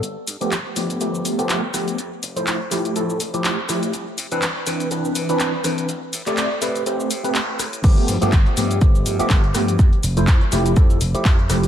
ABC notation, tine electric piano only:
X:1
M:4/4
L:1/16
Q:"Swing 16ths" 1/4=123
K:Gmix
V:1 name="Tine electric piano"
z3 [F,A,B,G] z2 [F,A,B,G]2 [F,A,B,G]3 [F,A,B,G]2 z [F,A,B,G]2 | z3 [F,A,Ec]2 z [F,A,EG]2 [F,A,EA]2 z [F,A,EG]2 z [F,A,EG]2 | z3 [E,CDB] z2 [E,CDB]2 [E,CDB]3 [E,CDB]2 z [E,CDB]2 | z3 [A,CGd]2 z [A,CGB]2 [A,CGc]2 z [A,CGB] z4 |
[F,A,B,G]3 [F,A,B,G] z2 [F,A,B,G]2 [A,B,]3 [F,A,B,G]2 z [F,A,B,G]2 | z3 [F,A,Ec]2 z [F,A,EG]2 [F,A,EA]2 z [F,A,EG]2 z [F,A,EG]2 |]